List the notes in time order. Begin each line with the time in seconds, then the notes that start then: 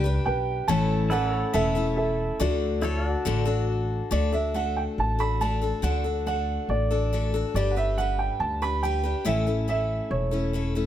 Already playing: C#2 G4 B4 D5 G5
0.04 D4 G4 B4
0.26 B1 B4 G5
0.68 A1 A2 E3 A3 C#4 E4 A4 C#5 A5
1.10 A3 C#4 E4 A4 B4 D5 F#5
1.33 A4 C#5
1.53 E1 A2 E3 A3 C#4 E4 A4 E5
1.75 A3 C#4 E4 A4
1.96 A4 E5
2.40 D2 D3 A3 D4 F#4 A4 D5
2.81 A3 D4 E4 F#4 A4 C#5
3.04 F#4 D5
3.25 A1 D3 A3 D4 F#4 A4
3.45 D4 F#4 A4
4.11 D2 D3 A3 D4 F#4 A4 D5
4.33 D4 F#4 A4 E5
4.54 A3 D4 F#4 A4 F#5
4.76 G5
4.98 A1 A5
5.19 D4 F#4 A4 B5
5.41 A3 D4 F#4 A4 A5
5.62 D4 F#4 A4
5.82 D2 D3 A3 D4 F#4 A4 F#5
6.04 D4 F#4 A4
6.26 A3 D4 F#4 A4 F#5
6.69 A1 D5
6.91 D4 F#4 A4
7.13 A3 D4 F#4 A4
7.34 D4 F#4 A4
7.54 G1 G3 D4 G4 B4 D5
7.71 F#5
7.76 D4 G4 B4 E5
7.98 G3 D4 G4 B4 F#5
8.19 G5
8.40 D2 A5
8.62 D4 G4 B4 B5
8.83 G3 D4 G4 B4 G5
9.03 D4 G4 B4
9.25 A1 A2 E3 A3 C#4 E4 A4 E5
9.47 A3 C#4 E4 A4
9.68 A3 C#4 E4 A4 E5
10.11 E1 C#5
10.31 A3 C#4 E4 A4
10.53 A3 C#4 E4 A4
10.75 A3 C#4 E4 A4